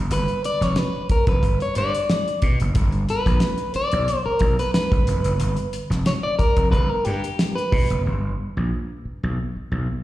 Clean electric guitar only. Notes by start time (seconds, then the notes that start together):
0.12 B4
0.45 D5
0.63 C#5
0.78 B4
1.11 A#4
1.29 B4
1.62 C#5
1.78 D5
3.10 B4
3.76 D5
4.26 A#4
4.60 B4
4.74 B4
6.07 C#5
6.23 D5
6.39 A#4
6.72 B4
6.90 A#4
7.05 G4
7.55 B4